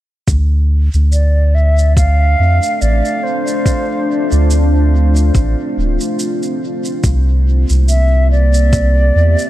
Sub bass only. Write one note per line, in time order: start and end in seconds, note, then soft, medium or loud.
0.28 0.89 D2 medium
0.94 2.36 D2 loud
2.39 2.60 F2 medium
2.82 3.02 A1 loud
4.32 5.31 D2 medium
5.35 5.55 A1 loud
5.77 5.98 D1 medium
7.04 7.65 C2 medium
7.70 9.12 C2 loud
9.15 9.36 E2 medium